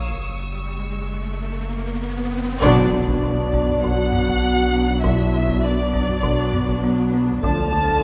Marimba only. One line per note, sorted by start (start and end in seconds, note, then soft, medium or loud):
2.62 2.81 B2 medium
2.93 3.11 B2 soft
3.24 3.42 B2 soft
3.54 3.72 B3 medium
3.84 4.02 B2 medium
4.14 4.32 B3 soft
4.44 4.62 B3 soft
4.74 4.92 B3 soft
5.04 5.22 B2 medium
5.34 5.52 B2 medium
5.64 5.81 B2 medium
5.93 6.11 B3 medium
6.23 6.41 B2 medium
6.54 6.72 B3 medium
6.84 7.02 B3 medium
7.14 7.32 B3 medium
7.44 7.62 D3 medium
7.73 7.91 D3 medium